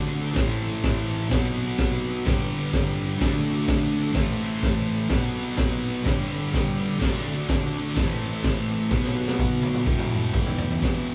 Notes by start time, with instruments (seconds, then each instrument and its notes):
Already playing: distorted electric guitar D3 A3 D4, transistor combo organ F#4 A4 D5
0.13 shaker
0.34 distorted electric guitar A2 E3, transistor combo organ E4 A4, kick, snare, crash, shaker
0.38 distorted electric guitar A3, transistor combo organ C5
0.60 shaker
0.83 kick, snare, crash, shaker
1.09 shaker
1.29 distorted electric guitar B2 F#3, transistor combo organ F#4 B4 D#5, kick, snare, crash, shaker
1.35 distorted electric guitar B3
1.56 shaker
1.69 shaker
1.78 kick, snare, crash, shaker
2.05 shaker
2.16 shaker
2.24 distorted electric guitar G2 D3, transistor combo organ G4 B4, kick, snare, crash
2.28 distorted electric guitar G3, transistor combo organ D5, shaker
2.51 shaker
2.73 kick, snare, crash, shaker
2.98 shaker
3.10 shaker
3.18 distorted electric guitar D3 A3, transistor combo organ F#4 A4 D5, kick, snare, crash, shaker
3.24 distorted electric guitar D4
3.45 shaker
3.68 kick, snare, crash, shaker
3.92 shaker
4.13 distorted electric guitar A2 E3, transistor combo organ E4 A4 C5, kick, snare, crash, shaker
4.18 distorted electric guitar A3
4.39 shaker
4.63 kick, snare, crash, shaker
4.87 shaker
5.09 distorted electric guitar B2 F#3, transistor combo organ F#4, kick, snare, crash, shaker
5.13 distorted electric guitar B3, transistor combo organ B4 D#5
5.34 shaker
5.57 kick, snare, crash, shaker
5.82 shaker
6.03 distorted electric guitar G2 D3, transistor combo organ G4, kick, snare, crash, shaker
6.07 distorted electric guitar G3, transistor combo organ B4 D5
6.29 transistor combo organ B5, shaker
6.54 transistor combo organ G5, kick, snare, crash, shaker
6.77 shaker
6.99 distorted electric guitar D3 A3, transistor combo organ F#4 A4, kick, snare, crash, shaker
7.04 distorted electric guitar D4, transistor combo organ D5
7.25 shaker
7.49 kick, snare, crash, shaker
7.73 shaker
7.96 distorted electric guitar A2 E3, transistor combo organ E4 A4 C5, kick, snare, crash, shaker
8.01 distorted electric guitar A3
8.19 shaker
8.44 kick, snare, crash, shaker
8.68 shaker
8.89 distorted electric guitar B2 F#3, transistor combo organ D#4 F#4 B4, kick, snare, shaker
8.94 distorted electric guitar B3
9.03 snare
9.27 snare
9.39 kick, high tom, shaker
9.62 high tom, shaker
9.74 mid tom, shaker
9.84 distorted electric guitar E2 B2, transistor combo organ E4 G4 B4, kick, shaker
9.90 distorted electric guitar E3
9.98 mid tom
10.10 transistor combo organ A5, mid tom, shaker
10.23 shaker
10.33 transistor combo organ G5, kick, mid tom, shaker
10.46 floor tom
10.58 floor tom, shaker
10.71 floor tom, shaker
10.80 distorted electric guitar E2 B2 E3, transistor combo organ E4 G4 B4, kick, snare, crash